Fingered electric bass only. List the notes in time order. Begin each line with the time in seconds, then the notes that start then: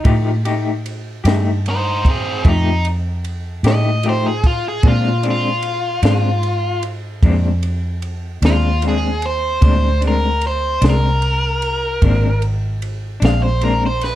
0.05 A2
1.25 G2
2.45 F2
3.63 A2
4.84 A#2
6.03 G#2
7.23 F2
8.42 D#2
9.62 D2
10.82 C2
12.02 G#1
13.22 A#1